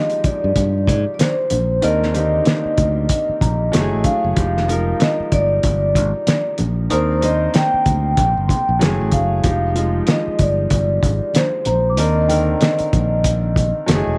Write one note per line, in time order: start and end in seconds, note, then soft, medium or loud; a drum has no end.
0.00 1.84 F3 medium
0.00 1.85 G#3 medium
0.00 1.84 D#4 medium
0.00 1.84 F4 medium
0.00 1.84 G4 medium
0.00 0.25 D#5 medium
0.00 0.84 C6 soft
0.10 closed hi-hat soft
0.24 1.13 D5 medium
0.24 muted fingered electric bass stroke soft
0.24 kick medium
0.24 closed hi-hat medium
0.44 0.55 G2 medium
0.56 0.88 G2 medium
0.56 kick medium
0.56 closed hi-hat medium
0.56 muted conga soft
0.56 low conga medium
0.87 1.04 G#2 medium
0.87 kick medium
0.87 closed hi-hat medium
0.87 muted conga soft
0.87 low conga medium
1.14 1.20 D5 medium
1.19 1.49 C5 medium
1.19 snare loud
1.19 closed hi-hat medium
1.19 high conga medium
1.50 1.80 A#1 medium
1.50 1.84 C5 medium
1.50 closed hi-hat medium
1.50 high conga medium
1.82 2.39 D#2 loud
1.82 2.10 D#3 medium
1.82 2.10 C4 medium
1.82 2.10 D4 medium
1.82 2.11 A#4 medium
1.82 4.01 D#5 loud
1.82 closed hi-hat medium
2.03 snare soft
2.13 2.22 D3 medium
2.13 3.23 A#3 medium
2.13 3.22 C4 medium
2.13 3.23 G4 medium
2.13 closed hi-hat medium
2.13 muted conga soft
2.20 3.25 D#4 medium
2.45 snare medium
2.45 closed hi-hat medium
2.45 high conga medium
2.66 muted fingered electric bass stroke soft
2.78 3.06 D2 medium
2.78 kick medium
2.78 closed hi-hat medium
3.09 kick medium
3.09 closed hi-hat medium
3.29 muted fingered electric bass stroke soft
3.41 3.69 A#1 medium
3.41 4.01 A#5 medium
3.41 kick medium
3.41 closed hi-hat medium
3.41 muted conga soft
3.41 low conga medium
3.72 3.90 F#1 medium
3.72 4.27 F#3 medium
3.72 4.28 A3 medium
3.72 4.28 E4 medium
3.72 3.81 G4 medium
3.72 snare medium
3.72 closed hi-hat medium
3.72 high conga medium
3.81 4.32 G#4 loud
3.93 4.04 A1 medium
4.04 5.03 F5 medium
4.04 kick medium
4.04 closed hi-hat medium
4.04 high conga medium
4.24 4.36 F#1 medium
4.36 4.92 F1 medium
4.36 4.64 F3 medium
4.36 4.64 G#3 medium
4.36 4.64 D#4 medium
4.36 4.65 G4 medium
4.36 kick loud
4.36 closed hi-hat medium
4.57 snare soft
4.67 5.76 F3 medium
4.67 5.76 G#3 medium
4.67 5.77 D#4 medium
4.67 5.77 A#4 medium
4.67 closed hi-hat medium
4.67 muted conga medium
5.00 5.33 D#5 medium
5.00 snare loud
5.00 closed hi-hat medium
5.00 high conga medium
5.20 muted fingered electric bass stroke soft
5.32 5.60 G1 medium
5.32 6.55 D5 loud
5.32 kick medium
5.32 closed hi-hat medium
5.63 5.96 G1 medium
5.63 kick medium
5.63 closed hi-hat medium
5.63 low conga medium
5.95 6.12 G#1 medium
5.95 kick medium
5.95 closed hi-hat medium
5.95 muted conga soft
5.95 low conga medium
6.27 snare medium
6.27 closed hi-hat medium
6.27 high conga medium
6.58 6.87 A#1 medium
6.58 closed hi-hat medium
6.58 high conga medium
6.90 7.47 D#2 medium
6.90 7.18 D#3 medium
6.90 7.18 C4 medium
6.90 7.18 D4 medium
6.90 7.19 A#4 medium
6.90 7.24 C5 medium
6.90 8.14 D#6 medium
6.90 closed hi-hat medium
7.21 8.31 A#3 medium
7.21 8.30 C4 medium
7.21 8.30 D#4 medium
7.21 8.31 C5 medium
7.21 7.56 D#5 medium
7.21 closed hi-hat medium
7.21 muted conga soft
7.54 8.78 G5 medium
7.54 snare medium
7.54 closed hi-hat medium
7.54 high conga medium
7.74 muted fingered electric bass stroke soft
7.86 8.14 D2 medium
7.86 kick medium
7.86 closed hi-hat medium
8.17 8.34 A#1 medium
8.17 kick medium
8.17 closed hi-hat medium
8.17 muted conga soft
8.17 low conga medium
8.37 8.48 G1 medium
8.48 9.08 C6 soft
8.48 kick medium
8.48 closed hi-hat medium
8.48 muted conga soft
8.48 low conga medium
8.69 8.80 A#1 medium
8.79 8.98 F#1 medium
8.79 9.35 F#3 medium
8.79 9.35 A3 medium
8.79 9.36 E4 medium
8.79 9.36 G#4 medium
8.79 snare loud
8.79 closed hi-hat medium
8.79 high conga medium
9.01 9.12 A1 medium
9.12 9.40 F#1 medium
9.12 9.72 F5 medium
9.12 kick medium
9.12 closed hi-hat medium
9.12 high conga medium
9.43 10.00 F1 medium
9.43 9.71 F3 medium
9.43 9.71 G#3 medium
9.43 9.72 D#4 medium
9.43 9.72 G4 medium
9.43 kick loud
9.43 closed hi-hat medium
9.75 10.83 F3 medium
9.75 10.84 G#3 medium
9.75 10.84 D#4 medium
9.75 10.84 F4 medium
9.75 closed hi-hat medium
9.75 muted conga soft
10.07 10.39 D#5 medium
10.07 snare loud
10.07 closed hi-hat medium
10.07 high conga medium
10.28 muted fingered electric bass stroke soft
10.39 10.67 G1 medium
10.39 11.39 D5 medium
10.39 kick medium
10.39 closed hi-hat medium
10.70 10.99 G1 medium
10.70 kick medium
10.70 closed hi-hat medium
10.70 muted conga soft
10.70 low conga medium
11.03 11.19 G#1 medium
11.03 kick medium
11.03 closed hi-hat medium
11.03 muted conga soft
11.03 low conga medium
11.34 11.66 C5 medium
11.34 snare medium
11.34 closed hi-hat medium
11.34 high conga medium
11.65 11.99 A#1 medium
11.65 12.00 C5 medium
11.65 12.26 A#5 medium
11.65 closed hi-hat medium
11.65 high conga medium
11.90 12.47 D6 soft
11.97 12.54 D#2 loud
11.97 12.25 D#3 medium
11.97 12.25 C4 medium
11.97 12.26 D4 medium
11.97 12.26 A#4 medium
11.97 14.16 D#5 medium
11.97 closed hi-hat medium
12.29 13.38 D3 medium
12.29 13.37 D#3 medium
12.29 13.38 C4 medium
12.29 13.38 A#4 medium
12.29 13.52 G5 medium
12.29 closed hi-hat medium
12.29 muted conga soft
12.61 snare medium
12.61 closed hi-hat medium
12.61 high conga medium
12.79 muted fingered electric bass stroke soft
12.79 closed hi-hat soft
12.93 13.71 A#1 medium
12.93 kick medium
12.93 closed hi-hat medium
13.24 kick medium
13.24 closed hi-hat medium
13.24 muted conga soft
13.56 kick medium
13.56 closed hi-hat medium
13.56 muted conga soft
13.56 low conga medium
13.86 14.04 F#1 medium
13.86 14.18 F#3 medium
13.86 14.18 A3 medium
13.86 14.18 E4 medium
13.86 13.96 G4 medium
13.86 snare medium
13.86 closed hi-hat medium
13.86 high conga medium
13.95 14.18 G#4 loud
14.07 14.18 E1 medium